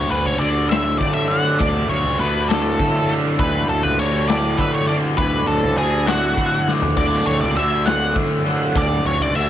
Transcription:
Already playing: overdriven electric guitar D2, lead electric guitar C#5
0.10 fingered electric bass D2, lead electric guitar B4, ride
0.25 fingered electric bass C#2, lead electric guitar C#5
0.39 fingered electric bass D2, overdriven electric guitar D3, lead electric guitar D5, ride
0.69 overdriven electric guitar A2, lead electric guitar E5, snare, ride
0.98 fingered electric bass D3, overdriven electric guitar A3, lead electric guitar D5, kick, ride
1.13 lead electric guitar E5
1.28 overdriven electric guitar D3, lead electric guitar F#5, ride
1.59 fingered electric bass D2, overdriven electric guitar D2, lead electric guitar D5, kick, ride
1.89 fingered electric bass D2, lead electric guitar C#5, ride
2.04 fingered electric bass C#2
2.18 fingered electric bass D2, overdriven electric guitar D3, lead electric guitar B4, ride
2.49 overdriven electric guitar A2, lead electric guitar A4, snare, ride
2.79 fingered electric bass D3, overdriven electric guitar A3, kick, ride
3.09 overdriven electric guitar D3, ride
3.39 fingered electric bass D2, overdriven electric guitar D2, lead electric guitar B4, kick, ride
3.68 fingered electric bass D2, lead electric guitar A4, ride
3.83 fingered electric bass C#2, lead electric guitar B4
3.98 fingered electric bass D2, overdriven electric guitar D3, lead electric guitar C#5, ride
4.28 overdriven electric guitar A2, lead electric guitar D5, snare, ride
4.58 fingered electric bass D3, overdriven electric guitar A3, lead electric guitar B4, kick, ride
4.74 lead electric guitar C#5
4.88 overdriven electric guitar D3, lead electric guitar D5, ride
5.17 fingered electric bass D2, overdriven electric guitar D2, lead electric guitar B4, kick, ride
5.47 fingered electric bass D2, lead electric guitar A4, ride
5.63 fingered electric bass C#2
5.77 fingered electric bass D2, overdriven electric guitar D3, lead electric guitar G#4, ride
6.07 overdriven electric guitar A2, lead electric guitar F#4, snare, ride
6.37 fingered electric bass D3, overdriven electric guitar A3, kick, ride
6.67 overdriven electric guitar D3, snare
6.82 floor tom
6.97 overdriven electric guitar D2, fingered electric bass D2, lead electric guitar D5, kick, crash
7.26 fingered electric bass D2, lead electric guitar C#5, ride
7.41 fingered electric bass C#2, lead electric guitar D5
7.56 fingered electric bass D2, overdriven electric guitar D3, lead electric guitar E5, ride
7.86 overdriven electric guitar A2, lead electric guitar F#5, snare, ride
8.15 fingered electric bass D3, overdriven electric guitar A3, kick, ride
8.45 overdriven electric guitar D3, ride
8.76 overdriven electric guitar D2, fingered electric bass D2, lead electric guitar D5, kick, ride
9.04 fingered electric bass D2, lead electric guitar C#5, ride
9.19 fingered electric bass C#2, lead electric guitar D5
9.35 fingered electric bass D2, overdriven electric guitar D3, lead electric guitar E5, ride

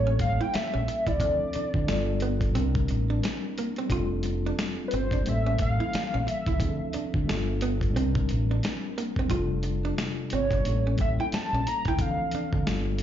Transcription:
Already playing: fingered electric bass A1, tine electric piano G3 A#3 C#4 E4 A4, analog synth lead C#5
0.07 hollow-body jazz guitar C#4
0.19 fingered electric bass A1, analog synth lead F5, muted hollow-body jazz guitar stroke, kick, closed hi-hat
0.41 hollow-body jazz guitar E4, analog synth lead G5
0.54 analog synth lead E5, muted fingered electric bass stroke, snare, closed hi-hat
0.74 fingered electric bass A#1, hollow-body jazz guitar C#4
0.88 muted hollow-body jazz guitar stroke, closed hi-hat
1.07 fingered electric bass C#2, hollow-body jazz guitar E4, analog synth lead D5, kick, closed hi-hat
1.19 fingered electric bass D2, tine electric piano F3 C4 D4 E4, kick, closed hi-hat
1.23 tine electric piano A4
1.53 hollow-body jazz guitar D4, muted fingered electric bass stroke, closed hi-hat
1.74 fingered electric bass D3, kick
1.86 fingered electric bass G1, tine electric piano G3 B3 D4 F4, snare, closed hi-hat
1.91 tine electric piano A4
2.20 hollow-body jazz guitar B3, closed hi-hat
2.41 kick, closed hi-hat
2.51 tine electric piano G3 C4, hollow-body jazz guitar C4
2.55 fingered electric bass C2, tine electric piano D4 E4, closed hi-hat
2.60 tine electric piano A#4
2.75 kick
2.88 fingered electric bass A1, muted hollow-body jazz guitar stroke, closed hi-hat
3.10 hollow-body jazz guitar D4
3.23 muted hollow-body jazz guitar stroke, snare, closed hi-hat
3.58 hollow-body jazz guitar A#3, closed hi-hat
3.76 hollow-body jazz guitar C4, closed hi-hat
3.86 tine electric piano G3 C4, kick
3.90 fingered electric bass F1, tine electric piano D4 F4, hollow-body jazz guitar F4, closed hi-hat
3.95 tine electric piano A4
4.23 muted hollow-body jazz guitar stroke, closed hi-hat
4.46 hollow-body jazz guitar D4
4.59 muted hollow-body jazz guitar stroke, snare, closed hi-hat
4.88 analog synth lead B4, closed hi-hat
4.93 fingered electric bass G1, hollow-body jazz guitar C4, analog synth lead C5
5.11 hollow-body jazz guitar D4, kick, closed hi-hat
5.21 tine electric piano G3 A#3
5.26 fingered electric bass A1, tine electric piano E3 C#4, analog synth lead E5, closed hi-hat
5.30 tine electric piano A4
5.46 hollow-body jazz guitar C#4
5.58 fingered electric bass A1, analog synth lead F5, muted hollow-body jazz guitar stroke, kick, closed hi-hat
5.80 hollow-body jazz guitar E4
5.93 muted fingered electric bass stroke, snare, closed hi-hat
6.14 fingered electric bass A#1, hollow-body jazz guitar C#4
6.27 analog synth lead E5, muted hollow-body jazz guitar stroke, closed hi-hat
6.46 fingered electric bass C#2, hollow-body jazz guitar E4, kick, closed hi-hat
6.58 fingered electric bass D2, tine electric piano F3 C4 D4 E4, kick, closed hi-hat
6.62 tine electric piano G#4
6.69 tine electric piano A4
6.93 hollow-body jazz guitar D4, muted fingered electric bass stroke, closed hi-hat
7.14 fingered electric bass D3, kick
7.25 tine electric piano G3 B3 D4 F4
7.29 fingered electric bass G1, tine electric piano A4, snare, closed hi-hat
7.61 hollow-body jazz guitar B3, closed hi-hat
7.81 kick, closed hi-hat
7.90 tine electric piano G3 C4
7.95 fingered electric bass C2, hollow-body jazz guitar C4, tine electric piano D4 E4, closed hi-hat
7.99 tine electric piano A#4
8.15 kick
8.29 fingered electric bass A1, muted hollow-body jazz guitar stroke, closed hi-hat
8.51 hollow-body jazz guitar D4
8.63 muted hollow-body jazz guitar stroke, snare, closed hi-hat
8.98 hollow-body jazz guitar A#3, closed hi-hat
9.16 hollow-body jazz guitar C4, kick
9.26 tine electric piano C3 G3, kick
9.30 fingered electric bass F1, tine electric piano D4 F4, hollow-body jazz guitar F4, closed hi-hat
9.34 tine electric piano A4
9.63 muted hollow-body jazz guitar stroke, closed hi-hat
9.85 hollow-body jazz guitar D4
9.98 muted hollow-body jazz guitar stroke, snare, closed hi-hat
10.30 fingered electric bass G1, hollow-body jazz guitar C4, closed hi-hat
10.35 analog synth lead C#5
10.51 hollow-body jazz guitar D4, kick, closed hi-hat
10.60 tine electric piano G3 A#3
10.64 fingered electric bass A1, tine electric piano C#4 E4, closed hi-hat
10.69 tine electric piano A4
10.87 hollow-body jazz guitar C#4
10.98 fingered electric bass A1, analog synth lead E5, muted hollow-body jazz guitar stroke, kick, closed hi-hat
11.20 hollow-body jazz guitar E4, analog synth lead G5
11.32 analog synth lead A5, muted fingered electric bass stroke, snare, closed hi-hat
11.53 fingered electric bass A#1, hollow-body jazz guitar C#4
11.67 analog synth lead A#5, muted hollow-body jazz guitar stroke, closed hi-hat
11.85 fingered electric bass C#2, hollow-body jazz guitar E4, analog synth lead G5, kick, closed hi-hat
11.97 fingered electric bass D2, tine electric piano E3 F3 C4 D4, analog synth lead F5, kick, closed hi-hat
12.01 tine electric piano A4
12.31 hollow-body jazz guitar D4, muted fingered electric bass stroke, closed hi-hat
12.53 fingered electric bass D3, kick
12.65 fingered electric bass G1, tine electric piano G3 A3 D4 F4, snare, closed hi-hat
12.69 tine electric piano B3 A4
12.98 closed hi-hat

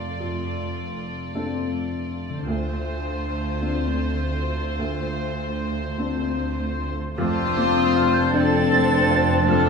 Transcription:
Already playing: double bass section F1, harp F2 C4 D4 A4 C5, cello section F2, viola section A3, grand piano C4 D4 A4, violin section F4 D5
0.20 grand piano F2
1.35 grand piano C4 D4 A4
2.29 harp D3
2.34 harp C4
2.38 harp D4
2.43 harp F4
2.47 grand piano D2, double bass section D2, cello section D2, viola section A3, violin section F4 C5
3.61 grand piano C4 D4 F4
4.79 grand piano D2
5.98 grand piano C4 D4 F4, flute section C6
7.17 double bass section F1, cello section F2, grand piano F2, harp F3, viola section A3, french horn section C4 D4, clarinet D4, violin section F4 C5, oboe A5, flute section D6
7.57 harp C4, grand piano C4
7.76 flute section D#6
7.94 harp F4, grand piano F4, flute section F6
8.14 flute section G6
8.34 viola section C4, violin section C4 A4, grand piano D4, harp C5, flute section A6
8.73 grand piano C4, harp D5
9.11 grand piano F4, harp C5
9.47 grand piano F2, harp F3, viola section A3, violin section D4 A4, flute section F6

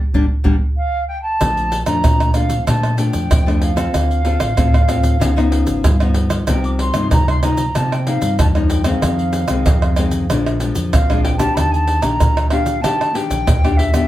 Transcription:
0.14 fingered electric bass G1, nylon-string guitar G3 A#3 D4, surdo
0.44 fingered electric bass G1, nylon-string guitar G3 A#3 D4, surdo
0.77 flute F5
1.07 flute G5
1.22 flute A5
1.41 fingered electric bass A#1, nylon-string guitar A#2 F3 A3 D4, pandeiro, tamborim, shaker, surdo
1.57 pandeiro, shaker
1.72 pandeiro, shaker
1.85 fingered electric bass F2, nylon-string guitar F3 A3 D4, flute A#5, pandeiro, tamborim, shaker
2.04 nylon-string guitar F2, fingered electric bass A#2, pandeiro, tamborim, shaker, surdo
2.20 pandeiro, tamborim, shaker
2.34 nylon-string guitar F3 A3 D4, flute F5, pandeiro, tamborim, shaker
2.50 pandeiro, shaker
2.66 nylon-string guitar A#2 F3 A3 D4, fingered electric bass A#2, flute A5, pandeiro, tamborim, shaker, surdo
2.83 pandeiro, tamborim, shaker
2.97 nylon-string guitar F3 A3 D4, flute G5, pandeiro, shaker
3.13 fingered electric bass F2, pandeiro, shaker
3.30 nylon-string guitar F2, fingered electric bass F2, pandeiro, tamborim, shaker, surdo
3.46 nylon-string guitar F3 A3 D4, pandeiro, tamborim, shaker
3.62 flute F5, pandeiro
3.76 nylon-string guitar C4 F4 A4, pandeiro, tamborim, shaker
3.93 fingered electric bass D2, nylon-string guitar D3, pandeiro, tamborim, shaker, surdo
4.11 pandeiro, shaker
4.25 nylon-string guitar C4 F4 A4, pandeiro
4.40 fingered electric bass A1, pandeiro, tamborim, shaker
4.57 fingered electric bass D2, nylon-string guitar A2 C4 F4 A4, pandeiro, tamborim, shaker, surdo
4.74 pandeiro, tamborim, shaker
4.88 nylon-string guitar C4 F4 A4, pandeiro, tamborim, shaker
5.03 pandeiro, shaker
5.20 fingered electric bass C#2, nylon-string guitar C#3 F3 B3 D#4, pandeiro, tamborim, shaker, surdo
5.36 nylon-string guitar F3 B3 D#4, pandeiro, tamborim, shaker
5.52 pandeiro
5.67 fingered electric bass G#1, pandeiro, shaker
5.84 fingered electric bass G2, pandeiro, tamborim, shaker, surdo
6.00 nylon-string guitar F3 B3 D#4, pandeiro, tamborim, shaker
6.14 pandeiro
6.30 pandeiro, tamborim, shaker
6.47 fingered electric bass C2, nylon-string guitar C3 F3 A#3 D#4, flute G5, pandeiro, tamborim, shaker, surdo
6.64 flute D6, pandeiro, shaker
6.79 flute C6, pandeiro
6.94 fingered electric bass G2, nylon-string guitar F3 A#3 D#4, pandeiro, tamborim, shaker
7.11 nylon-string guitar G2, fingered electric bass C3, flute A#5, pandeiro, tamborim, shaker, surdo
7.28 flute C6, pandeiro, tamborim, shaker
7.42 nylon-string guitar F3 A#3 D#4, flute A#5, pandeiro, tamborim, shaker
7.57 pandeiro, shaker
7.75 nylon-string guitar C3 F3 A#3 D#4, fingered electric bass C3, flute A5, pandeiro, tamborim, shaker, surdo
7.92 flute G5, pandeiro, tamborim, shaker
8.07 nylon-string guitar F3 A#3 D#4, flute F5, pandeiro
8.22 fingered electric bass G2, pandeiro, shaker
8.39 fingered electric bass E2, nylon-string guitar G2, flute A5, pandeiro, tamborim, shaker, surdo
8.55 nylon-string guitar F3 A#3 D#4, pandeiro, tamborim, shaker
8.70 flute G5, pandeiro, shaker
8.84 nylon-string guitar D#3 G#3 C4, flute F5, pandeiro, tamborim, shaker
9.02 fingered electric bass F2, nylon-string guitar F2, pandeiro, tamborim, shaker, surdo
9.19 pandeiro, shaker
9.33 pandeiro, shaker
9.48 fingered electric bass C2, nylon-string guitar D#3 G#3 C4, pandeiro, tamborim, shaker
9.66 fingered electric bass F2, nylon-string guitar C3, pandeiro, tamborim, shaker, surdo
9.82 pandeiro, tamborim, shaker
9.96 nylon-string guitar D#3 G#3 C4, pandeiro, tamborim, shaker
10.11 pandeiro, shaker
10.29 fingered electric bass A#1, nylon-string guitar A#2 F3 G#3 D4, pandeiro, tamborim, shaker, surdo
10.46 pandeiro, tamborim, shaker
10.60 nylon-string guitar F3 G#3 D4, pandeiro, shaker
10.75 fingered electric bass F2, pandeiro, shaker
10.93 fingered electric bass A#1, nylon-string guitar F2, flute F5, pandeiro, tamborim, shaker, surdo
11.09 nylon-string guitar F3 G#3 D4, pandeiro, tamborim, shaker
11.23 flute G5, pandeiro
11.37 nylon-string guitar A#3 D4 G4, flute A5, pandeiro, tamborim, shaker
11.54 fingered electric bass D#2, nylon-string guitar D#3, flute B5, pandeiro, tamborim, shaker, surdo
11.58 flute A5
11.71 flute G#5, pandeiro, shaker
11.75 flute A5
11.87 pandeiro
12.01 fingered electric bass A#1, nylon-string guitar A#3 D4 G4, flute A#5, pandeiro, tamborim, shaker
12.20 nylon-string guitar A#2, fingered electric bass D#3, pandeiro, tamborim, shaker, surdo
12.37 pandeiro, tamborim, shaker
12.50 nylon-string guitar A#3 D4 G4, flute F5, pandeiro, tamborim
12.66 pandeiro, shaker
12.81 nylon-string guitar D#3 A#3 D4 G4, fingered electric bass D#3, flute A5, pandeiro, tamborim, shaker, surdo
13.01 pandeiro, tamborim, shaker
13.13 nylon-string guitar A#3 D4 G4, flute G5 A5, pandeiro
13.30 fingered electric bass A#1, pandeiro, shaker
13.46 fingered electric bass D#2, nylon-string guitar A#2, pandeiro, tamborim, shaker, surdo
13.64 nylon-string guitar A#3 D4 G4, pandeiro, tamborim, shaker
13.77 flute E5, pandeiro
13.93 nylon-string guitar B3 D4 G4, pandeiro, tamborim, shaker

